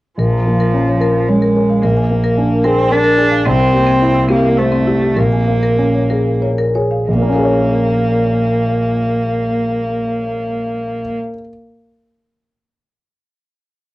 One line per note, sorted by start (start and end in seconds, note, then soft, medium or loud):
0.17 1.79 A#1 soft
0.17 1.30 F3 medium
0.17 0.27 A#4 soft
0.32 0.41 A#5 soft
0.46 0.90 A#3 soft
0.46 0.55 F5 soft
0.60 0.68 A#4 medium
0.74 1.18 C#4 soft
0.74 0.83 A#5 soft
0.88 0.96 C#5 soft
1.01 1.45 A#4 soft
1.01 1.10 A#4 medium
1.28 1.83 G#3 medium
1.28 1.73 C#4 soft
1.28 1.37 C#5 soft
1.42 1.51 A#4 medium
1.56 1.84 A#4 soft
1.56 1.64 C#5 soft
1.70 1.78 F5 soft
1.82 3.42 A#1 soft
1.82 2.66 A#3 medium
1.82 1.92 A#4 medium
1.97 2.05 G#5 soft
2.10 2.54 A#3 soft
2.10 2.18 F5 soft
2.24 2.32 A#4 medium
2.37 2.81 D4 soft
2.37 2.45 G#5 soft
2.51 2.59 D5 soft
2.64 2.93 C4 medium
2.64 3.08 G#4 medium
2.64 2.73 A#4 medium
2.91 3.48 D4 medium
2.91 3.35 A#4 soft
2.91 3.00 D5 soft
3.04 3.13 A#4 medium
3.18 3.45 G#4 soft
3.18 3.26 D5 medium
3.31 3.40 F5 medium
3.45 5.13 C2 medium
3.45 3.54 C4 medium
3.45 4.29 C4 medium
3.59 3.68 A#4 soft
3.72 4.18 A#3 soft
3.72 3.81 G4 medium
3.86 3.95 C4 medium
4.00 4.47 E4 soft
4.00 4.09 A#4 soft
4.14 4.23 E4 soft
4.29 4.60 A#3 medium
4.29 4.37 C4 medium
4.29 4.76 G4 medium
4.57 5.20 A3 medium
4.57 4.66 E4 soft
4.57 5.05 C5 soft
4.72 4.81 C4 medium
4.87 4.96 E4 soft
4.87 5.17 G4 soft
5.02 5.11 G4 soft
5.16 7.03 A#1 soft
5.16 6.43 A#3 medium
5.16 5.26 A#4 medium
5.32 5.41 G#5 soft
5.47 5.98 A#3 soft
5.47 5.57 F5 soft
5.63 5.72 A#4 medium
5.78 6.29 C#4 soft
5.78 5.88 G#5 soft
5.95 6.04 C#5 soft
6.10 6.62 G#4 soft
6.10 6.20 A#4 medium
6.42 6.94 A#4 soft
6.42 6.52 C#5 soft
6.58 6.68 A#4 medium
6.75 7.08 G#4 soft
6.75 6.85 C#5 soft
6.91 7.01 F5 soft
7.08 11.13 A#1 soft
7.08 11.14 A#3 medium
7.15 11.20 A#2 soft
7.22 11.28 A#3 medium
7.29 11.34 C#4 soft
7.36 11.41 G#4 soft
7.43 11.49 C#5 soft